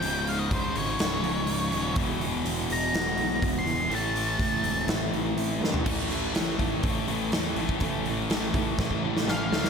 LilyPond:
<<
  \new Staff \with { instrumentName = "Lead electric guitar" } { \time 4/4 \key a \minor \tempo 4 = 123 g''8 f''16 ees''16 c''8 des''2~ des''8 | r4. bes''4. r16 c'''8. | a''2 r2 | r1 |
r2. f''4 | }
  \new Staff \with { instrumentName = "Clean electric guitar" } { \clef bass \time 4/4 \key a \minor des,8 aes,8 aes,8 des8 f8 aes,8 f8 aes,8 | e,8 b,8 e8 gis8 b8 e8 b8 e8 | a,8 e8 a8 c'8 e'8 a8 e'8 a8 | <a, e a>8 <a, e>8 <a, e>8 <a, e a>8 <a, e>8 <a, e a>8 <a, e>8 <a, e>8 |
<a, e a>8 <a, e>8 <a, e>8 <a, e a>8 <a, e>8 <a, e a>8 <a, e>8 <a, e>8 | }
  \new Staff \with { instrumentName = "Distorted electric guitar" } { \clef bass \time 4/4 \key a \minor <des, aes, des>1 | <e, b, e>1 | <a, e a>1 | <a, e a>8 <a, e a>8 <a, e a>8 <a, e a>8 <a, e a>8 <a, e a>8 <a, e a>8 <a, e a>8 |
<a, e a>8 <a, e a>8 <a, e a>8 <a, e a>8 <a, e a>8 <a, e a>8 <a, e a>8 <a, e a>8 | }
  \new Staff \with { instrumentName = "Distorted electric guitar" } { \clef bass \time 4/4 \key a \minor <des, aes, des>2.~ <des, aes, des>8 <des, aes, des>8 | <e, b, e>2.~ <e, b, e>8 <e, b, e>8 | <a, e a>2.~ <a, e a>8 <a, e a>8 | <a, e a>8 <a, e a>8 <a, e a>8 <a, e a>8 <a, e a>8 <a, e a>8 <a, e a>8 <a, e a>8 |
<a, e a>8 <a, e a>8 <a, e a>8 <a, e a>8 <a, e a>8 <a, e a>8 <a, e a>8 <a, e a>8 | }
  \new Staff \with { instrumentName = "Picked electric bass" } { \clef bass \time 4/4 \key a \minor des,,4 des,8 aes,,8 des,,8 des,,8 des,,8 ees,,8 | e,,8 e,,8 e,,8 e,,8 e,,8 b,,8 e,,8 e,,8 | a,,4 a,8 e,,8 a,,8 a,,8 a,,8 g,8 | a,,8 a,,8 a,,8 a,,8 a,,8 a,,8 e,8 a,,8 |
a,,4 a,,8 a,,8 a,,4 a,,8 d,8 | }
  \new DrumStaff \with { instrumentName = "Drums" } \drummode { \time 4/4 hho8 hho8 <hho bd>8 hho8 <hho sn>8 hho8 hho8 hho8 | <hho bd>8 hho8 hho8 hho8 <hho sn>8 hho8 <hho bd>8 hho8 | hho8 hho8 <hho bd>8 hho8 <hho sn>8 hho8 hho8 sn16 tomfh16 | <cymc bd>8 hho8 <hho sn>8 <hho bd>8 <hho bd>8 hho8 <hho sn>8 hho16 bd16 |
<hho bd>8 hho8 <hho sn>8 <hho bd>8 <bd sn>16 bd8 sn16 sn8 sn16 sn16 | }
>>